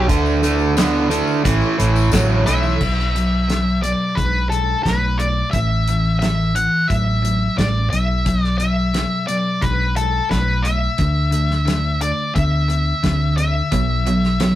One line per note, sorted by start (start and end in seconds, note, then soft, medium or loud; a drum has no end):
0.00 0.11 D4 medium
0.00 0.10 F#4 medium
0.09 1.21 D2 loud
0.09 0.40 D3 medium
0.09 0.44 D3 medium
0.09 0.42 E3 medium
0.09 0.41 A3 medium
0.09 0.43 A3 medium
0.09 0.44 E4 loud
0.09 0.45 F#4 medium
0.09 kick loud
0.09 closed hi-hat medium
0.09 tambourine soft
0.26 tambourine soft
0.43 0.74 D3 medium
0.43 0.60 E3 medium
0.43 0.74 A3 medium
0.43 0.61 A3 medium
0.43 0.60 E4 medium
0.43 0.58 F#4 medium
0.43 closed hi-hat medium
0.43 tambourine medium
0.59 0.78 A3 soft
0.59 0.78 E4 soft
0.59 0.77 F#4 medium
0.59 tambourine soft
0.77 1.08 D3 medium
0.77 1.29 D3 medium
0.77 1.29 E3 loud
0.77 1.29 A3 medium
0.77 1.08 B3 loud
0.77 1.29 E4 loud
0.77 1.27 F#4 loud
0.77 snare loud
0.77 closed hi-hat medium
0.77 tambourine loud
0.94 tambourine soft
1.10 1.41 D3 medium
1.10 1.42 A3 medium
1.10 closed hi-hat medium
1.10 tambourine medium
1.27 1.46 E4 medium
1.27 1.45 F#4 medium
1.27 tambourine soft
1.32 1.45 A3 soft
1.44 1.59 A1 medium
1.44 1.75 A2 medium
1.44 1.62 A2 medium
1.44 1.75 E3 loud
1.44 1.62 E3 medium
1.44 1.63 A3 medium
1.44 1.63 C#4 medium
1.44 1.62 E4 medium
1.44 1.61 A4 medium
1.44 kick loud
1.44 closed hi-hat medium
1.61 1.78 A3 medium
1.61 1.79 C#4 medium
1.61 1.79 E4 medium
1.61 1.79 A4 medium
1.61 tambourine soft
1.78 2.07 A1 loud
1.78 2.09 A2 medium
1.78 2.09 E3 medium
1.78 2.13 A3 medium
1.78 2.13 C#4 medium
1.78 2.13 E4 medium
1.78 2.13 A4 medium
1.78 closed hi-hat medium
1.96 tambourine medium
2.11 2.44 A1 medium
2.11 2.43 A2 medium
2.11 2.47 A2 medium
2.11 2.47 E3 medium
2.11 2.44 F#3 medium
2.11 2.47 A3 medium
2.11 2.48 C#4 medium
2.11 2.48 E4 medium
2.11 2.48 A4 medium
2.11 kick medium
2.11 snare loud
2.11 closed hi-hat medium
2.11 tambourine loud
2.46 2.78 B1 medium
2.46 2.77 A2 medium
2.46 2.78 E3 medium
2.46 2.65 A3 medium
2.46 2.65 C#4 medium
2.46 2.64 E4 medium
2.46 3.82 E5 loud
2.46 closed hi-hat medium
2.46 tambourine medium
2.51 2.63 A4 medium
2.63 2.82 C#4 medium
2.63 2.82 E4 medium
2.63 2.81 A4 medium
2.63 tambourine soft
2.67 2.83 A3 medium
2.80 3.93 B1 medium
2.80 3.11 B2 medium
2.80 3.11 F#3 medium
2.80 kick medium
2.80 crash medium
2.99 snare soft
3.14 3.45 B2 medium
3.14 3.46 F#3 medium
3.14 closed hi-hat medium
3.48 3.79 B2 medium
3.48 3.79 F#3 medium
3.48 snare medium
3.48 closed hi-hat medium
3.82 4.14 B2 medium
3.82 4.14 F#3 medium
3.82 4.14 D5 medium
3.82 closed hi-hat medium
4.15 4.73 B1 medium
4.15 4.48 B2 medium
4.15 4.48 G#3 medium
4.15 4.48 B4 medium
4.15 kick medium
4.15 closed hi-hat medium
4.50 4.82 B2 medium
4.50 4.82 G#3 medium
4.50 4.83 A4 medium
4.50 closed hi-hat soft
4.83 5.41 B1 medium
4.83 5.16 B2 medium
4.83 5.17 A3 medium
4.83 5.20 B4 medium
4.83 kick medium
4.83 snare medium
4.83 closed hi-hat medium
5.18 5.50 B2 medium
5.18 5.50 A3 medium
5.18 5.50 D5 medium
5.18 closed hi-hat soft
5.51 6.65 A1 medium
5.51 5.85 A2 medium
5.51 5.85 E3 medium
5.51 6.17 E5 medium
5.51 kick medium
5.51 closed hi-hat medium
5.88 6.19 A2 medium
5.88 6.19 E3 medium
5.88 closed hi-hat medium
6.19 6.52 A2 medium
6.19 6.52 E3 medium
6.19 6.56 E5 medium
6.19 snare loud
6.19 closed hi-hat medium
6.55 6.86 A2 medium
6.55 6.86 E3 medium
6.55 6.87 F#5 medium
6.55 closed hi-hat medium
6.88 7.46 A1 medium
6.88 7.20 A2 medium
6.88 7.20 F#3 medium
6.88 7.58 E5 medium
6.88 kick medium
6.88 closed hi-hat medium
7.22 7.54 A2 medium
7.22 7.54 F#3 medium
7.22 closed hi-hat soft
7.56 7.86 A1 medium
7.56 7.88 A2 medium
7.56 7.88 G3 medium
7.56 7.90 D5 medium
7.56 kick medium
7.56 snare medium
7.56 closed hi-hat medium
7.90 9.04 B1 medium
7.90 8.23 B2 medium
7.90 8.23 F#3 medium
7.90 8.44 E5 medium
7.90 closed hi-hat medium
8.25 8.57 B2 medium
8.25 8.57 F#3 medium
8.25 kick medium
8.25 closed hi-hat medium
8.44 8.57 D5 medium
8.44 snare soft
8.58 8.91 B2 medium
8.58 8.91 F#3 medium
8.58 9.27 E5 medium
8.58 closed hi-hat medium
8.94 9.25 B2 medium
8.94 9.25 F#3 medium
8.94 snare medium
8.94 closed hi-hat medium
9.27 9.59 B2 medium
9.27 9.59 F#3 medium
9.27 9.63 D5 medium
9.27 closed hi-hat medium
9.61 10.19 B1 medium
9.61 9.93 B2 medium
9.61 9.94 G#3 medium
9.61 9.96 B4 medium
9.61 kick medium
9.61 closed hi-hat medium
9.96 10.27 B2 medium
9.96 10.27 G#3 medium
9.96 10.30 A4 medium
9.96 closed hi-hat medium
10.29 10.87 B1 medium
10.29 10.61 B2 medium
10.29 10.61 A3 medium
10.29 10.66 B4 medium
10.29 kick medium
10.29 snare medium
10.29 closed hi-hat medium
10.63 10.95 B2 medium
10.63 10.95 A3 medium
10.63 12.02 E5 medium
10.63 closed hi-hat soft
10.98 12.11 D2 medium
10.98 11.30 D3 medium
10.98 11.30 A3 medium
10.98 kick medium
10.98 closed hi-hat medium
11.31 11.63 D3 soft
11.31 11.64 A3 medium
11.31 closed hi-hat medium
11.51 snare soft
11.65 11.97 D3 medium
11.65 11.98 A3 medium
11.65 snare medium
11.65 closed hi-hat medium
12.01 12.32 D3 medium
12.01 12.32 A3 medium
12.01 12.35 D5 medium
12.01 closed hi-hat medium
12.35 12.92 D2 medium
12.35 12.66 D3 medium
12.35 12.66 B3 medium
12.35 13.36 E5 medium
12.35 kick loud
12.35 closed hi-hat medium
12.68 13.00 D3 medium
12.68 13.00 B3 medium
12.68 closed hi-hat soft
13.03 13.60 D2 medium
13.03 13.34 D3 medium
13.03 13.34 C4 medium
13.03 kick medium
13.03 snare medium
13.03 closed hi-hat medium
13.37 13.69 D3 medium
13.37 13.69 C4 medium
13.37 14.55 E5 medium
13.37 closed hi-hat medium
13.72 14.55 B1 medium
13.72 14.03 B2 medium
13.72 14.03 F#3 medium
13.72 kick loud
13.72 closed hi-hat medium
14.06 14.37 B2 medium
14.06 14.37 F#3 medium
14.06 closed hi-hat medium
14.24 snare soft
14.40 14.55 B2 medium
14.40 14.55 F#3 medium
14.40 snare loud
14.40 closed hi-hat medium